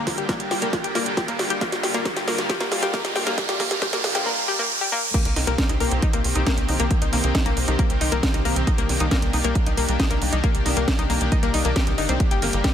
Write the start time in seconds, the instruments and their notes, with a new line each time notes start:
Already playing: riser
0.07 analog synth bass G1, analog synth pad D3 G3 A#3 G4, kick, snare, open hi-hat
0.18 analog synth bass G1, synth arpeggio sound G4, closed hi-hat
0.29 analog synth pad D3 G3 A#3 G4, synth arpeggio sound A#3, kick, snare, closed hi-hat
0.40 analog synth bass G1, closed hi-hat
0.51 analog synth bass G1, analog synth pad D3 G3 A#3 G4, synth arpeggio sound G4, snare, open hi-hat
0.62 analog synth bass G1, synth arpeggio sound A#3, closed hi-hat
0.73 analog synth pad D3 G3 A#3 G4, kick, snare, closed hi-hat
0.84 analog synth bass G1, synth arpeggio sound G4, closed hi-hat
0.95 analog synth bass G1, analog synth pad D3 G3 A#3 G4, synth arpeggio sound A#3, snare, open hi-hat
1.06 analog synth bass G1, closed hi-hat
1.17 analog synth pad D3 G3 A#3 G4, synth arpeggio sound G4, kick, snare, closed hi-hat
1.28 analog synth bass G1, synth arpeggio sound A#3, closed hi-hat
1.39 analog synth bass G1, analog synth pad D3 G3 A#3 G4, snare, open hi-hat
1.50 analog synth bass G1, synth arpeggio sound G4, closed hi-hat
1.61 analog synth pad D3 G3 A#3 F4, synth arpeggio sound A#3, kick, snare, closed hi-hat
1.72 analog synth bass G1, snare, closed hi-hat
1.83 analog synth bass G1, analog synth pad D3 G3 A#3 F4, synth arpeggio sound G4, snare, open hi-hat
1.94 analog synth bass G1, synth arpeggio sound A#3, snare, closed hi-hat
2.05 analog synth pad D3 G3 A#3 F4, kick, snare, closed hi-hat
2.16 analog synth bass G1, synth arpeggio sound G4, snare, closed hi-hat
2.27 analog synth bass G1, analog synth pad D3 G3 A#3 F4, synth arpeggio sound A#3, snare, open hi-hat
2.38 analog synth bass G1, snare, closed hi-hat
2.49 analog synth pad D3 G3 A#3 F4, synth arpeggio sound G4, kick, snare, closed hi-hat
2.60 analog synth bass G1, synth arpeggio sound A#3, snare, closed hi-hat
2.72 analog synth bass G1, analog synth pad D3 G3 A#3 F4, snare, open hi-hat
2.83 analog synth bass G1, synth arpeggio sound G4, snare, closed hi-hat
2.94 analog synth pad D3 G3 A#3 F4, synth arpeggio sound A#3, kick, snare, closed hi-hat
3.05 analog synth bass G1, snare, closed hi-hat
3.16 analog synth bass G1, analog synth pad D3 G3 A#3 F4, synth arpeggio sound G4, snare, open hi-hat
3.27 analog synth bass G1, synth arpeggio sound A#3, snare, closed hi-hat
3.38 analog synth pad D3 G3 A#3 F4, kick, snare, closed hi-hat
3.49 analog synth bass G1, synth arpeggio sound G4, snare, closed hi-hat
3.60 analog synth bass G1, analog synth pad D3 G3 A#3 F4, synth arpeggio sound A#3, kick, snare, open hi-hat
3.71 analog synth bass G1, snare, closed hi-hat
3.82 analog synth pad D3 G3 A#3 F4, synth arpeggio sound G4, kick, snare, closed hi-hat
3.93 analog synth bass G1, synth arpeggio sound A#3, snare, closed hi-hat
4.04 analog synth bass G1, analog synth pad D3 G3 A#3 F4, snare, open hi-hat
4.15 analog synth bass G1, synth arpeggio sound G4, snare, closed hi-hat
4.26 synth arpeggio sound A#3
4.48 synth arpeggio sound G4
4.59 synth arpeggio sound A#3
4.81 synth arpeggio sound G4
4.92 synth arpeggio sound A#3
5.14 analog synth pad D#3 A#3 C4 G4, synth arpeggio sound A#3, kick, closed hi-hat, crash
5.25 analog synth bass C2, closed hi-hat
5.36 analog synth bass C2, analog synth pad D#3 A#3 C4 G4, synth arpeggio sound D#4, snare, open hi-hat
5.47 analog synth bass C2, synth arpeggio sound A#3, closed hi-hat
5.58 analog synth pad D#3 A#3 C4 G4, kick, snare, closed hi-hat
5.69 analog synth bass C2, synth arpeggio sound D#4, closed hi-hat
5.80 analog synth bass C2, analog synth pad D#3 A#3 C4 G4, synth arpeggio sound A#3, open hi-hat
5.91 analog synth bass C2, closed hi-hat
6.02 analog synth pad D#3 A#3 C4 G4, synth arpeggio sound D#4, kick, closed hi-hat
6.13 analog synth bass C2, synth arpeggio sound A#3, closed hi-hat
6.24 analog synth bass C2, analog synth pad D#3 A#3 C4 G4, open hi-hat
6.35 analog synth bass C2, synth arpeggio sound D#4, closed hi-hat
6.47 analog synth pad D#3 A#3 C4 G4, synth arpeggio sound A#3, kick, snare, closed hi-hat
6.58 analog synth bass C2, closed hi-hat
6.68 analog synth bass C2, analog synth pad D#3 A#3 C4 G4, synth arpeggio sound D#4, open hi-hat
6.80 analog synth bass C2, synth arpeggio sound A#3, closed hi-hat
6.91 analog synth pad D#3 A#3 C4 G4, kick, closed hi-hat
7.02 analog synth bass C2, synth arpeggio sound D#4, closed hi-hat
7.13 analog synth bass C2, analog synth pad D#3 A#3 C4 G4, synth arpeggio sound A#3, snare, open hi-hat
7.24 analog synth bass C2, closed hi-hat
7.35 analog synth pad D#3 A#3 C4 G4, synth arpeggio sound D#4, kick, snare, closed hi-hat
7.46 analog synth bass C2, synth arpeggio sound A#3, closed hi-hat
7.57 analog synth bass C2, analog synth pad D#3 A#3 C4 G4, open hi-hat
7.68 analog synth bass C2, synth arpeggio sound D#4, closed hi-hat
7.79 analog synth pad D#3 A#3 C4 G4, synth arpeggio sound A#3, kick, closed hi-hat
7.90 analog synth bass C2, closed hi-hat
8.01 analog synth bass C2, analog synth pad D#3 A#3 C4 G4, synth arpeggio sound D#4, open hi-hat
8.12 analog synth bass C2, synth arpeggio sound A#3, closed hi-hat
8.23 analog synth pad D#3 A#3 C4 G4, kick, snare, closed hi-hat
8.34 analog synth bass C2, synth arpeggio sound D#4, closed hi-hat
8.45 analog synth bass C2, analog synth pad D#3 A#3 C4 G4, synth arpeggio sound A#3, open hi-hat
8.56 analog synth bass C2, closed hi-hat
8.67 analog synth pad D#3 A#3 D4 G4, synth arpeggio sound D#4, kick, closed hi-hat
8.78 analog synth bass C2, synth arpeggio sound A#3, closed hi-hat
8.89 analog synth bass C2, analog synth pad D#3 A#3 D4 G4, snare, open hi-hat
9.00 analog synth bass C2, synth arpeggio sound D#4, closed hi-hat
9.11 analog synth pad D#3 A#3 D4 G4, synth arpeggio sound A#3, kick, snare, closed hi-hat
9.22 analog synth bass C2, closed hi-hat
9.33 analog synth bass C2, analog synth pad D#3 A#3 D4 G4, synth arpeggio sound D#4, open hi-hat
9.44 analog synth bass C2, synth arpeggio sound A#3, closed hi-hat
9.55 analog synth pad D#3 A#3 D4 G4, kick, closed hi-hat
9.66 analog synth bass C2, synth arpeggio sound D#4, closed hi-hat
9.77 analog synth bass C2, analog synth pad D#3 A#3 D4 G4, synth arpeggio sound A#3, open hi-hat
9.88 analog synth bass C2, closed hi-hat
9.99 analog synth pad D#3 A#3 D4 G4, synth arpeggio sound D#4, kick, snare, closed hi-hat
10.11 analog synth bass C2, synth arpeggio sound A#3, closed hi-hat
10.22 analog synth bass C2, analog synth pad D#3 A#3 D4 G4, open hi-hat
10.33 analog synth bass C2, synth arpeggio sound D#4, closed hi-hat
10.44 analog synth pad D#3 A#3 D4 G4, synth arpeggio sound A#3, kick, closed hi-hat
10.55 analog synth bass C2, closed hi-hat
10.66 analog synth bass C2, analog synth pad D#3 A#3 D4 G4, synth arpeggio sound D#4, snare, open hi-hat
10.77 analog synth bass C2, synth arpeggio sound A#3, closed hi-hat
10.88 analog synth pad D#3 A#3 D4 G4, kick, snare, closed hi-hat
10.99 analog synth bass C2, synth arpeggio sound D#4, closed hi-hat
11.10 analog synth bass C2, analog synth pad D#3 A#3 D4 G4, synth arpeggio sound A#3, open hi-hat
11.21 analog synth bass C2, closed hi-hat
11.32 analog synth pad D#3 A#3 D4 G4, synth arpeggio sound D#4, kick, closed hi-hat
11.43 analog synth bass C2, synth arpeggio sound A#3, closed hi-hat
11.54 analog synth bass C2, analog synth pad D#3 A#3 D4 G4, synth arpeggio sound D#4, open hi-hat
11.65 analog synth bass C2, synth arpeggio sound A#3, closed hi-hat
11.76 analog synth pad D#3 A#3 D4 G4, synth arpeggio sound G4, kick, snare, closed hi-hat
11.87 analog synth bass C2, closed hi-hat
11.98 analog synth bass G1, analog synth pad D#3 A#3 D4 G4, synth arpeggio sound D#4, open hi-hat
12.09 analog synth bass C2, synth arpeggio sound C4, closed hi-hat
12.20 analog synth pad D3 G3 A#3 G4, kick, closed hi-hat
12.31 analog synth bass G1, synth arpeggio sound G4, closed hi-hat
12.42 analog synth bass G1, analog synth pad D3 G3 A#3 G4, synth arpeggio sound A#3, snare, open hi-hat
12.53 analog synth bass G1, closed hi-hat
12.64 analog synth pad D3 G3 A#3 G4, synth arpeggio sound G4, kick, snare, closed hi-hat